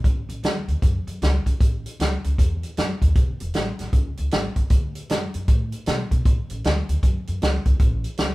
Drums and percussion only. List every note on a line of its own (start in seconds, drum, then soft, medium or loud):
0.04 kick loud
0.04 closed hi-hat medium
0.29 closed hi-hat medium
0.43 snare loud
0.43 closed hi-hat medium
0.68 closed hi-hat medium
0.82 kick loud
0.82 closed hi-hat medium
1.07 closed hi-hat medium
1.22 snare loud
1.22 closed hi-hat medium
1.46 kick medium
1.46 closed hi-hat medium
1.61 kick loud
1.61 closed hi-hat medium
1.86 closed hi-hat medium
2.00 snare loud
2.00 closed hi-hat medium
2.24 closed hi-hat medium
2.38 kick loud
2.38 closed hi-hat medium
2.63 closed hi-hat medium
2.77 snare loud
2.77 closed hi-hat medium
3.02 kick medium
3.02 closed hi-hat medium
3.15 kick loud
3.15 closed hi-hat medium
3.40 closed hi-hat medium
3.54 snare loud
3.54 closed hi-hat medium
3.79 snare soft
3.79 closed hi-hat medium
3.93 kick loud
3.93 closed hi-hat medium
4.17 closed hi-hat medium
4.31 snare loud
4.31 closed hi-hat medium
4.56 kick medium
4.56 closed hi-hat medium
4.70 kick loud
4.70 closed hi-hat medium
4.95 closed hi-hat medium
5.09 snare loud
5.09 closed hi-hat medium
5.34 closed hi-hat medium
5.48 kick loud
5.48 closed hi-hat medium
5.72 closed hi-hat medium
5.86 snare loud
5.86 closed hi-hat medium
6.11 kick medium
6.11 closed hi-hat medium
6.25 kick loud
6.25 closed hi-hat medium
6.50 closed hi-hat medium
6.64 snare loud
6.64 closed hi-hat medium
6.89 closed hi-hat medium
7.03 kick medium
7.03 closed hi-hat medium
7.27 closed hi-hat medium
7.42 snare loud
7.42 closed hi-hat medium
7.65 kick medium
7.65 closed hi-hat medium
7.79 kick loud
7.79 closed hi-hat medium
8.04 closed hi-hat medium
8.17 snare loud
8.17 closed hi-hat medium